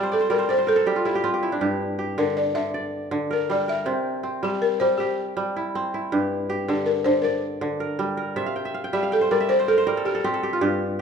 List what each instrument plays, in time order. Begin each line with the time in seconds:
Already playing: kora C3 G3 A#4 D5 E5 F5 G5, balafon G4
0.03 kora C5
0.12 balafon A4, kora D5
0.21 kora C5
0.30 kora G3 A#4, balafon A#4
0.39 kora C5
0.49 balafon C5, kora D5
0.58 kora C5
0.67 balafon A4, kora A#4
0.76 kora A4
0.86 kora G3 G4
0.96 kora F4
1.05 kora E4, balafon G4
1.15 kora G4
1.24 kora C4 F4
1.34 kora G4
1.43 kora E4
1.52 kora D4
1.61 kora G2 G4
1.99 kora G4
2.18 kora D3, balafon A#4
2.37 balafon D5
2.55 kora D3, balafon E5
2.74 kora D5
3.11 kora D3
3.31 kora A#4, balafon A#4
3.50 kora G3, balafon D5
3.68 kora A#4, balafon E5
3.86 kora C3 C4
4.23 kora C4
4.43 kora G3, balafon G4
4.62 balafon A#4
4.80 kora G3, balafon C5
4.98 balafon G4, kora G4
5.37 kora G3
5.56 kora E4
5.75 kora C4
5.94 kora E4
6.12 kora G2 G4
6.50 kora G4
6.68 kora D3, balafon G4
6.86 balafon A#4
7.04 kora D3, balafon C5
7.22 balafon A#4, kora D5
7.61 kora D3
7.80 kora A#4
7.99 kora G3
8.17 kora A#4
8.36 kora C3 E5
8.46 kora F5
8.56 kora G5
8.65 kora E5
8.74 kora F5
8.84 kora G5
8.93 kora G3 E5, balafon G4
9.03 kora F5
9.12 balafon A4, kora G5
9.21 kora C5
9.31 kora G3 D5, balafon A#4
9.40 kora E5
9.49 balafon C5, kora D5
9.59 kora C5
9.68 balafon A4, kora A#4
9.78 kora C5
9.87 kora G3 A#4
9.97 kora A4
10.05 balafon G4, kora A#4
10.15 kora A4
10.24 kora C4 G4
10.34 kora A4
10.43 kora G4
10.53 kora F4
10.61 kora G2 G4